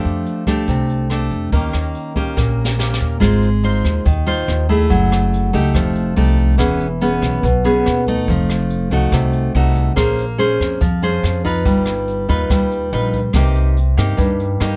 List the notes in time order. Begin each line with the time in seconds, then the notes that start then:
Already playing: F3 A3 D4 G4
0.05 F2, closed hi-hat
0.26 closed hi-hat
0.47 A3 D4 G4, kick, cross-stick, closed hi-hat
0.68 C2 C3, kick, closed hi-hat
0.89 closed hi-hat
1.10 A3 D4 G4, cross-stick, closed hi-hat
1.31 F2, closed hi-hat
1.52 D#2 D#3 A#3 C#4 G4, kick, closed hi-hat
1.73 D#2, cross-stick, closed hi-hat
1.95 closed hi-hat
2.16 A#3 C#4 G4, kick, closed hi-hat
2.37 A#1 A#2, kick, snare
2.65 snare
2.78 A#3 C#4 G4, snare
2.93 snare
3.01 D#2
3.20 G#1 G#3 D#4 F4 C5, kick, cross-stick, closed hi-hat
3.42 closed hi-hat
3.63 D#4 F4 C5, closed hi-hat
3.84 D#2, kick, cross-stick, closed hi-hat
4.06 D#2 D#3, kick, closed hi-hat
4.26 D#4 F4 C5, closed hi-hat
4.48 D#2, cross-stick, closed hi-hat
4.69 A3 E4 G#4, kick, closed hi-hat
4.90 F#1 F#3, kick, closed hi-hat
5.12 cross-stick, closed hi-hat
5.33 closed hi-hat
5.53 C#2 A3 D#4 G4, kick, closed hi-hat
5.75 F1 F3, kick, cross-stick, closed hi-hat
5.95 closed hi-hat
6.16 C2 A3 D#4 G4, closed hi-hat
6.38 kick, closed hi-hat
6.58 E1 E3 B3 C#4 G#4, kick, cross-stick, closed hi-hat
6.79 closed hi-hat
7.01 B3 C#4 G#4, closed hi-hat
7.22 B1, kick, cross-stick, closed hi-hat
7.43 B1 B2, kick, closed hi-hat
7.64 B3 C#4 G#4, closed hi-hat
7.86 D#2, cross-stick, closed hi-hat
8.07 A3 D#4, kick, closed hi-hat
8.28 F1 F3, kick, closed hi-hat
8.50 cross-stick, closed hi-hat
8.70 closed hi-hat
8.91 C2 A3 D#4 F#4, kick, closed hi-hat
9.12 C2 C3, kick, cross-stick, closed hi-hat
9.33 closed hi-hat
9.55 C2 A3 D#4 F#4, closed hi-hat
9.75 kick, closed hi-hat
9.96 A#1 A#3 C#4 G#4 C5, kick, cross-stick, closed hi-hat
10.19 closed hi-hat
10.38 C#4 G#4 C5, closed hi-hat
10.60 F2, kick, cross-stick, closed hi-hat
10.81 F2 F3, kick, closed hi-hat
11.02 C#4 G#4 C5, closed hi-hat
11.23 F2, cross-stick, closed hi-hat
11.44 D#4 F4 B4, kick, closed hi-hat
11.65 G1 G3, kick, closed hi-hat
11.86 cross-stick, closed hi-hat
12.08 closed hi-hat
12.29 D#2 D#4 F4 B4, kick, closed hi-hat
12.50 D#2 G3, kick, cross-stick, closed hi-hat
12.71 closed hi-hat
12.93 A#1 D#4 F4 B4, closed hi-hat
13.13 kick, closed hi-hat
13.33 C2 C3 A#3 D#4 G4, kick, cross-stick, closed hi-hat
13.55 closed hi-hat
13.77 closed hi-hat
13.97 G2 A#3 D#4 G4, kick, cross-stick, closed hi-hat
14.17 G2, kick, closed hi-hat
14.40 closed hi-hat
14.60 G2 A#3 D#4 G4, cross-stick, closed hi-hat